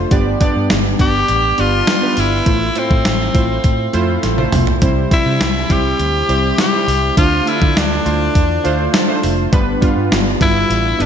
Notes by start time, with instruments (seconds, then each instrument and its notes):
Already playing: synth keys A3 D4 F4 C5
0.11 fingered electric bass G1, synth keys G2 B3 D4 G4 D5, kick, closed hi-hat
0.40 synth keys B3 D4 G4 D5, kick, closed hi-hat
0.56 fingered electric bass G2
0.70 fingered electric bass G1, snare, closed hi-hat
0.99 fingered electric bass G1, synth keys B3 D4 G4 D5, tenor saxophone G4, kick, closed hi-hat
1.28 fingered electric bass A1, closed hi-hat
1.58 fingered electric bass G1, synth keys B3 D4 G4 D5, tenor saxophone F4, closed hi-hat
1.87 snare, closed hi-hat
2.02 synth keys B3 D4 G4 B4
2.17 fingered electric bass G1, tenor saxophone E4, open hi-hat
2.46 fingered electric bass A1, synth keys A2 A3 E4 F4 C5, kick, closed hi-hat
2.75 synth keys A3 E4 F4 C5, tenor saxophone C4, closed hi-hat
2.91 fingered electric bass A2, kick
3.05 fingered electric bass A1, snare, closed hi-hat
3.34 fingered electric bass A1, synth keys A3 E4 F4 C5, kick, closed hi-hat
3.64 fingered electric bass A2, kick, closed hi-hat
3.93 fingered electric bass F2, synth keys A3 E4 F4 C5, closed hi-hat
4.23 fingered electric bass A1, snare, closed hi-hat
4.37 synth keys A3 E4 F4 C5, high tom
4.52 fingered electric bass B1, mid tom, open hi-hat
4.67 floor tom
4.81 fingered electric bass C2, synth keys C3 G3 C4 E4 C5, kick, closed hi-hat
5.10 synth keys G3 C4 E4 C5, tenor saxophone E4, kick, closed hi-hat
5.26 fingered electric bass C3
5.41 fingered electric bass C2, snare, closed hi-hat
5.70 fingered electric bass C2, synth keys G3 C4 E4 C5, tenor saxophone G4, kick, closed hi-hat
5.99 fingered electric bass D2, closed hi-hat
6.28 fingered electric bass C2, synth keys G3 C4 E4 C5, closed hi-hat
6.58 tenor saxophone G4, snare, closed hi-hat
6.73 synth keys G3 C4 E4 C5
6.88 fingered electric bass C2, open hi-hat
7.17 fingered electric bass D2, synth keys D3 A3 D4 F4 C5, tenor saxophone F4, kick, closed hi-hat
7.46 synth keys A3 D4 E4 A4, tenor saxophone E4, closed hi-hat
7.53 synth keys F4
7.62 fingered electric bass D3, kick
7.76 fingered electric bass D2, tenor saxophone D4, snare, closed hi-hat
8.05 fingered electric bass D2, synth keys A3 D4 F4 C5, closed hi-hat
8.35 fingered electric bass E2, kick, closed hi-hat
8.64 fingered electric bass D2, synth keys A3 D4 F4 C5 F5, closed hi-hat
8.94 synth keys A5, snare, closed hi-hat
9.08 synth keys A3 D4 F4 C5
9.23 fingered electric bass F1, open hi-hat
9.52 fingered electric bass G1, synth keys G2 G3 B3 D4 B4, kick, closed hi-hat
9.81 synth keys G3 B3 D4 F4, kick, closed hi-hat
9.97 fingered electric bass G2
10.12 fingered electric bass G1, snare, closed hi-hat
10.40 fingered electric bass G1, synth keys G3 B3 D4 B4, tenor saxophone E4, kick, closed hi-hat
10.70 fingered electric bass A1, closed hi-hat
10.99 fingered electric bass G1, synth keys G3 B3 D4 B4, tenor saxophone D4, closed hi-hat